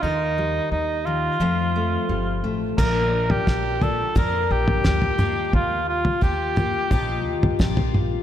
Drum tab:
CC |----------------|x---------------|----------------|
SD |----------------|----o-------o---|------------o---|
T2 |----------------|-----------oo-o-|------o----oo-o-|
FT |----------------|o--o--o-o--o-o--|o--o--o-o--o-o--|
BD |----------------|o---o---o---o---|o---o---o---o---|